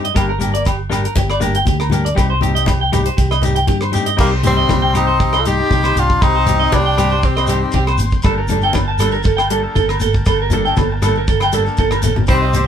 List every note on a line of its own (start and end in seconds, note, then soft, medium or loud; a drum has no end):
0.00 0.10 G2 medium
0.04 0.12 D#5 medium
0.04 closed hi-hat soft
0.14 1.06 G1 medium
0.14 0.30 G3 medium
0.14 0.30 A#3 medium
0.14 0.31 D4 medium
0.14 0.24 G4 medium
0.14 0.31 A#4 medium
0.14 kick medium
0.14 cross-stick medium
0.14 closed hi-hat soft
0.14 muted conga soft
0.14 low agogo medium
0.14 shekere medium
0.29 0.37 A#4 medium
0.38 0.52 G3 medium
0.38 0.52 A#3 medium
0.38 0.53 D4 medium
0.38 0.50 G4 medium
0.38 0.50 A#4 medium
0.38 closed hi-hat soft
0.38 shekere medium
0.51 0.68 A#3 soft
0.51 0.67 A#4 medium
0.51 0.62 D5 medium
0.51 closed hi-hat soft
0.65 0.75 G4 medium
0.65 kick medium
0.65 cross-stick medium
0.65 closed hi-hat soft
0.65 low agogo medium
0.65 shekere medium
0.90 1.06 G3 medium
0.90 1.06 A#3 medium
0.90 1.06 D4 medium
0.90 1.00 G4 medium
0.90 1.06 A#4 medium
0.90 cross-stick medium
0.90 closed hi-hat soft
0.90 low agogo medium
0.90 shekere medium
1.05 1.13 A#4 medium
1.05 closed hi-hat soft
1.16 1.62 G1 medium
1.16 1.26 G4 medium
1.16 kick medium
1.16 closed hi-hat soft
1.16 muted conga soft
1.16 high conga medium
1.16 shekere medium
1.30 1.38 D5 medium
1.30 cross-stick medium
1.30 low agogo medium
1.40 1.56 G3 medium
1.40 1.56 A#3 medium
1.40 1.56 D4 medium
1.40 1.51 G4 medium
1.40 1.57 A#4 medium
1.40 closed hi-hat soft
1.40 muted conga soft
1.40 shekere medium
1.54 1.64 G5 medium
1.54 closed hi-hat soft
1.54 shekere soft
1.66 2.12 D2 medium
1.66 1.76 G4 medium
1.66 kick medium
1.66 closed hi-hat soft
1.66 high conga medium
1.66 shekere medium
1.80 1.88 A#4 medium
1.80 cross-stick medium
1.80 low agogo medium
1.90 2.07 G3 medium
1.90 2.07 A#3 medium
1.90 2.08 D4 medium
1.90 2.01 G4 medium
1.90 2.08 A#4 medium
1.90 closed hi-hat soft
1.90 muted conga soft
1.90 high conga medium
1.90 shekere medium
2.05 2.13 D5 medium
2.05 closed hi-hat soft
2.15 3.08 C2 medium
2.15 2.32 G3 medium
2.15 2.32 C4 medium
2.15 2.32 D#4 medium
2.15 2.26 G4 medium
2.15 2.32 G4 medium
2.15 kick medium
2.15 cross-stick medium
2.15 closed hi-hat soft
2.15 muted conga soft
2.15 low agogo medium
2.15 shekere medium
2.30 2.39 C5 medium
2.40 2.54 G3 medium
2.40 2.54 C4 medium
2.40 2.53 D#4 medium
2.40 2.51 G4 medium
2.40 2.52 G4 medium
2.40 closed hi-hat soft
2.40 high conga medium
2.40 shekere medium
2.54 2.70 C4 soft
2.54 2.70 D#4 soft
2.54 2.69 G4 medium
2.54 2.64 D#5 medium
2.54 closed hi-hat soft
2.54 shekere soft
2.66 2.77 G4 medium
2.66 kick medium
2.66 cross-stick medium
2.66 closed hi-hat soft
2.66 high conga medium
2.66 low agogo medium
2.66 shekere medium
2.81 2.90 G5 medium
2.92 3.08 G3 medium
2.92 3.09 D#4 medium
2.92 3.02 G4 medium
2.92 3.09 G4 medium
2.92 muted clean electric guitar stroke medium
2.92 cross-stick medium
2.92 closed hi-hat soft
2.92 low conga medium
2.92 low agogo medium
2.92 shekere medium
3.06 3.14 C5 medium
3.06 closed hi-hat soft
3.06 shekere soft
3.17 3.64 C2 medium
3.17 3.27 G4 medium
3.17 kick medium
3.17 closed hi-hat soft
3.17 muted conga soft
3.17 shekere medium
3.31 3.40 D#5 medium
3.31 cross-stick medium
3.31 low agogo medium
3.42 3.58 G3 medium
3.42 3.59 C4 medium
3.42 3.59 D#4 medium
3.42 3.52 G4 medium
3.42 3.59 G4 medium
3.42 closed hi-hat soft
3.42 muted conga soft
3.42 low conga medium
3.42 shekere medium
3.55 3.64 G5 medium
3.55 closed hi-hat soft
3.55 shekere soft
3.67 4.14 G2 medium
3.67 3.77 G4 medium
3.67 kick medium
3.67 closed hi-hat soft
3.67 high conga medium
3.67 shekere medium
3.81 3.90 C5 medium
3.81 cross-stick medium
3.81 low agogo medium
3.92 4.09 G3 medium
3.92 4.09 C4 medium
3.92 4.09 D#4 medium
3.92 4.03 G4 medium
3.92 4.10 G4 medium
3.92 closed hi-hat soft
3.92 muted conga soft
3.92 shekere medium
4.06 4.15 D#5 medium
4.06 closed hi-hat medium
4.06 shekere soft
4.17 4.65 C2 loud
4.17 4.34 G3 medium
4.17 4.31 A#3 medium
4.17 4.34 C4 medium
4.17 4.34 D#4 medium
4.17 4.34 G4 medium
4.17 4.28 G4 medium
4.17 12.67 G5 medium
4.17 kick medium
4.17 cross-stick medium
4.17 crash medium
4.17 muted conga soft
4.17 low agogo medium
4.17 shekere medium
4.21 4.32 G3 medium
4.21 8.21 C5 medium
4.21 8.21 C6 medium
4.31 4.40 C5 medium
4.43 4.57 G3 medium
4.43 4.56 C4 medium
4.43 4.93 C4 medium
4.43 4.55 D#4 medium
4.43 4.53 G4 medium
4.43 closed hi-hat soft
4.43 muted conga soft
4.43 high conga medium
4.43 shekere medium
4.48 4.93 G3 medium
4.55 4.72 C4 soft
4.55 4.72 D#4 soft
4.55 4.71 G4 soft
4.55 4.66 D#5 medium
4.59 shekere soft
4.69 5.61 C2 medium
4.69 4.79 G4 medium
4.69 kick medium
4.69 cross-stick medium
4.69 high conga medium
4.69 low agogo medium
4.69 shekere medium
4.82 4.91 G5 medium
4.94 5.10 G3 medium
4.94 5.10 C4 medium
4.94 5.11 D#4 medium
4.94 5.42 D#4 medium
4.94 5.04 G4 medium
4.94 5.11 G4 medium
4.94 cross-stick medium
4.94 closed hi-hat soft
4.94 low agogo medium
4.94 shekere medium
4.98 5.41 C4 medium
5.07 5.16 C5 medium
5.07 shekere soft
5.20 5.29 G4 medium
5.20 kick medium
5.20 muted conga soft
5.20 shekere medium
5.33 5.42 D#5 medium
5.33 cross-stick medium
5.33 low agogo medium
5.39 5.47 F4 medium
5.39 5.49 A4 medium
5.45 5.59 G3 medium
5.45 6.02 D#4 medium
5.45 5.59 D#4 medium
5.45 5.55 G4 medium
5.45 6.01 G4 loud
5.45 5.58 G4 medium
5.45 closed hi-hat soft
5.45 shekere medium
5.59 5.75 C4 soft
5.59 5.74 D#4 soft
5.59 5.74 G4 soft
5.71 5.94 C2 medium
5.71 5.80 G4 medium
5.71 kick medium
5.71 high conga medium
5.71 shekere medium
5.83 5.93 C5 medium
5.83 cross-stick medium
5.83 low agogo medium
5.95 6.19 C2 medium
5.95 6.24 F4 medium
5.95 6.06 G4 medium
5.95 closed hi-hat soft
5.95 muted conga soft
5.95 shekere medium
6.01 6.26 D4 medium
6.10 kick medium
6.10 shekere soft
6.21 6.67 C2 medium
6.21 6.76 C4 medium
6.21 6.75 D#4 loud
6.21 6.31 G4 medium
6.21 kick medium
6.21 cross-stick medium
6.21 muted conga soft
6.21 low agogo medium
6.21 shekere medium
6.36 6.44 C5 medium
6.47 6.60 G3 soft
6.47 6.60 C4 medium
6.47 6.59 D#4 medium
6.47 6.56 G4 medium
6.47 6.58 G4 medium
6.47 closed hi-hat soft
6.47 muted conga soft
6.47 high conga medium
6.47 low conga medium
6.47 shekere medium
6.59 6.75 C4 soft
6.59 6.75 D#4 soft
6.59 6.68 D#5 medium
6.59 muted clean electric guitar stroke medium
6.59 shekere soft
6.72 7.64 C2 medium
6.72 7.25 G3 medium
6.72 7.27 D4 medium
6.72 6.81 G4 medium
6.72 kick medium
6.72 cross-stick medium
6.72 high conga loud
6.72 low agogo medium
6.72 shekere medium
6.86 6.94 G5 medium
6.98 7.13 G3 medium
6.98 7.14 C4 medium
6.98 7.07 G4 medium
6.98 7.14 G4 medium
6.98 muted clean electric guitar stroke medium
6.98 cross-stick medium
6.98 closed hi-hat soft
6.98 low agogo medium
6.98 shekere medium
7.10 7.19 C5 medium
7.10 shekere soft
7.23 8.00 G3 medium
7.23 8.00 C4 medium
7.23 7.33 G4 medium
7.23 kick medium
7.23 muted conga soft
7.23 shekere medium
7.36 7.45 D#5 medium
7.36 cross-stick medium
7.36 low agogo medium
7.47 7.61 G3 medium
7.47 7.61 C4 medium
7.47 7.62 D#4 medium
7.47 7.58 G4 medium
7.47 7.62 G4 medium
7.47 closed hi-hat medium
7.47 shekere medium
7.63 7.78 C4 soft
7.63 7.77 D#4 soft
7.63 7.77 G4 soft
7.72 7.97 C2 medium
7.72 7.83 G4 medium
7.72 kick medium
7.72 high conga medium
7.72 shekere medium
7.87 7.96 C5 medium
7.87 cross-stick medium
7.87 low agogo medium
7.98 8.21 G#1 medium
7.98 muted clean electric guitar stroke medium
7.98 closed hi-hat soft
7.98 muted conga soft
7.98 shekere medium
8.11 kick medium
8.11 shekere soft
8.22 8.70 G1 medium
8.22 8.40 G3 medium
8.22 8.40 A#3 medium
8.22 8.40 D4 medium
8.22 8.34 A4 medium
8.22 8.40 A4 medium
8.22 12.25 A#4 medium
8.22 12.25 A5 medium
8.22 kick medium
8.22 cross-stick medium
8.22 muted conga soft
8.22 low agogo medium
8.22 shekere medium
8.38 8.46 A#4 medium
8.48 8.63 G3 medium
8.48 8.63 A#3 medium
8.48 8.64 D4 medium
8.48 8.59 A4 medium
8.48 closed hi-hat soft
8.48 muted conga soft
8.48 high conga medium
8.48 shekere medium
8.52 8.63 A4 medium
8.61 8.78 D4 medium
8.61 8.78 A4 medium
8.61 8.72 G5 medium
8.61 shekere soft
8.66 8.79 A#3 soft
8.73 9.66 G1 medium
8.73 kick medium
8.73 cross-stick medium
8.73 high conga medium
8.73 low agogo medium
8.73 shekere medium
8.88 8.96 A5 medium
8.98 9.16 G3 medium
8.98 9.09 A4 medium
8.98 9.17 A4 medium
8.98 cross-stick medium
8.98 closed hi-hat soft
8.98 low agogo medium
8.98 shekere medium
9.02 9.17 D4 medium
9.11 9.21 A#4 medium
9.11 shekere soft
9.23 9.34 A4 medium
9.23 kick medium
9.23 muted conga soft
9.23 shekere medium
9.37 9.46 G5 medium
9.37 cross-stick medium
9.37 low agogo medium
9.50 9.64 G3 medium
9.50 9.64 A#3 medium
9.50 9.63 D4 medium
9.50 9.60 A4 medium
9.50 9.62 A4 medium
9.50 closed hi-hat soft
9.63 9.79 A#3 soft
9.63 9.79 D4 medium
9.63 9.78 A4 medium
9.75 9.99 G1 medium
9.75 9.85 A4 medium
9.75 kick medium
9.75 high conga medium
9.75 shekere medium
9.89 9.97 A#4 medium
9.89 cross-stick medium
9.89 low agogo medium
10.00 10.24 G1 medium
10.00 10.11 A4 medium
10.00 closed hi-hat soft
10.00 muted conga soft
10.00 shekere medium
10.14 kick medium
10.14 shekere soft
10.25 10.72 G1 medium
10.25 10.36 A4 medium
10.25 kick medium
10.25 cross-stick medium
10.25 muted conga soft
10.25 low agogo medium
10.25 shekere medium
10.42 10.50 A#4 medium
10.50 10.65 G3 medium
10.50 10.66 A#3 medium
10.50 10.66 D4 medium
10.50 10.62 A4 medium
10.50 10.64 A4 medium
10.50 closed hi-hat soft
10.50 muted conga soft
10.50 high conga medium
10.50 low conga medium
10.50 shekere medium
10.65 10.81 A#3 soft
10.65 10.80 D4 medium
10.65 10.80 A4 medium
10.65 10.74 G5 medium
10.65 shekere soft
10.76 11.68 G1 medium
10.76 10.87 A4 medium
10.76 kick medium
10.76 cross-stick medium
10.76 high conga medium
10.76 low agogo medium
10.76 shekere medium
10.92 muted clean electric guitar stroke medium
11.02 11.18 G3 medium
11.02 11.18 A#3 medium
11.02 11.18 D4 medium
11.02 11.19 A4 medium
11.02 11.13 A4 medium
11.02 cross-stick medium
11.02 closed hi-hat soft
11.02 low agogo medium
11.02 shekere medium
11.15 11.25 A#4 medium
11.15 shekere soft
11.28 11.38 A4 medium
11.28 kick loud
11.28 muted conga soft
11.28 shekere medium
11.40 11.50 G5 medium
11.40 cross-stick medium
11.40 low agogo medium
11.53 11.66 G3 medium
11.53 11.66 A#3 medium
11.53 11.65 D4 medium
11.53 11.62 A4 medium
11.53 11.64 A4 medium
11.53 closed hi-hat soft
11.53 shekere medium
11.65 11.81 A#3 soft
11.65 11.81 D4 medium
11.65 11.80 A4 medium
11.65 shekere soft
11.77 12.01 G1 medium
11.77 11.88 A4 medium
11.77 kick medium
11.77 high conga medium
11.77 shekere medium
11.91 12.00 A#4 medium
11.91 cross-stick medium
11.91 high conga medium
11.91 low agogo medium
12.02 12.27 G1 medium
12.02 12.13 A4 medium
12.02 closed hi-hat soft
12.02 low conga medium
12.02 shekere loud
12.16 low conga medium
12.16 shekere soft
12.27 12.67 C2 medium
12.27 12.65 G3 medium
12.27 12.44 C4 medium
12.27 12.65 C4 medium
12.27 12.44 D#4 medium
12.27 12.45 G4 medium
12.27 12.38 C5 medium
12.27 12.67 C5 medium
12.27 12.67 D#5 medium
12.27 kick medium
12.27 cross-stick medium
12.27 low agogo medium
12.27 shekere medium
12.42 12.51 D#5 medium
12.54 12.67 C4 medium
12.54 12.67 G4 medium
12.54 12.64 C5 medium
12.54 muted clean electric guitar stroke medium
12.54 closed hi-hat medium
12.54 muted conga soft
12.54 high conga medium
12.54 shekere medium